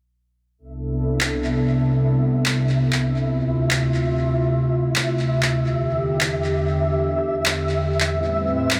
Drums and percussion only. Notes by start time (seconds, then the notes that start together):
1.21 clap
2.46 clap
2.93 clap
3.71 clap
4.96 clap
5.43 clap
6.21 clap
7.46 clap
8.00 clap
8.71 clap